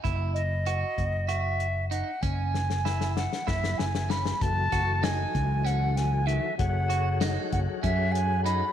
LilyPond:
<<
  \new Staff \with { instrumentName = "Flute" } { \time 7/8 \key fis \dorian \tempo 4 = 96 r8 dis''4. e''4 fis''8 | gis''4. fis''8 e''8 gis''8 b''8 | a''4 gis''4 fis''8 gis''8 e''8 | fis''4 r8 fis''8 e''8 gis''8 b''8 | }
  \new Staff \with { instrumentName = "Tonewheel organ" } { \time 7/8 \key fis \dorian r2. r8 | r2. r8 | <e fis fis' a'>2.~ <e fis fis' a'>8 | <fis fis' gis' a' cis'' fis''>2.~ <fis fis' gis' a' cis'' fis''>8 | }
  \new Staff \with { instrumentName = "Clean electric guitar" } { \time 7/8 \key fis \dorian e'4 fis'4 fis'4 dis'8 | cis'4 e'4 e'4 cis'8 | r8 fis'8 dis'4 cis'4 dis8 | r8 fis'8 dis'4 cis'4 dis'8 | }
  \new Staff \with { instrumentName = "Fretless electric bass" } { \clef bass \time 7/8 \key fis \dorian fis,,4. fis,,2 | fis,,2 fis,,8 fis,,4 | fis,,8 fis,,4 cis,2 | fis,,4. fis,,16 r16 fis,4. | }
  \new DrumStaff \with { instrumentName = "Drums" } \drummode { \time 7/8 <hh bd>8 hh8 hh8 <hh bd>8 hh8 hh8 hh8 | <hh bd>8 sn16 sn16 sn16 sn16 sn16 sn16 <bd sn>16 sn16 sn16 sn16 sn16 sn16 | <hh bd>8 <hh bd sn>8 <hh sn>8 <hh bd>8 hh8 <hh sn>8 hh8 | <hh bd>8 hh8 <hh sn>8 <hh bd>8 <hh bd>8 hh8 hh8 | }
>>